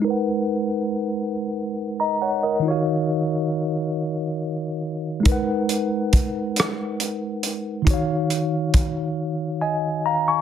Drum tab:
HH |------|------|xxxxxx|xxx---|
SD |------|------|---r--|------|
BD |------|------|o-o---|o-o---|